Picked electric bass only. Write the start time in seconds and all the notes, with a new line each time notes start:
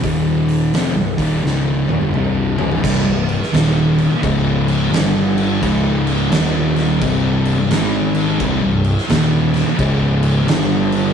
0.04 D#1
0.74 F1
0.96 C1
1.18 D#1
1.44 C#1
1.88 D#1
2.01 G1
2.14 C1
2.58 C#1
2.84 C1
3.05 C1
3.53 D#1
4.10 muted picked electric bass stroke
4.23 C#1
4.93 G1
5.62 C#1
6.32 D#1
7.02 C1
7.57 C1
7.70 G#1
8.40 C1
8.62 C1
9.09 D#1
9.67 muted picked electric bass stroke
9.79 C#1
10.48 G1